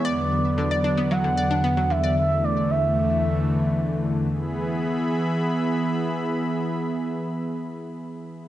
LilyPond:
<<
  \new Staff \with { instrumentName = "Soft synth lead" } { \time 4/4 \key e \mixolydian \tempo 4 = 113 d''4 d''4 fis''4. e''8 | e''8 d''8 e''2 r4 | r1 | r1 | }
  \new Staff \with { instrumentName = "Synth arpeggio sound" } { \time 4/4 \key e \mixolydian d''16 r8. d16 d''16 d'16 b16 fis16 d16 d''16 d'16 b16 fis16 d16 d''16 | r1 | r1 | r1 | }
  \new Staff \with { instrumentName = "Analog synth pad" } { \time 4/4 \key e \mixolydian << { <fis b>1 | <e a>1 | <e b gis' e'' b''>1~ | <e b gis' e'' b''>1 | } \\ { <e, d>1~ | <e, d>1 | r1 | r1 | } >> }
>>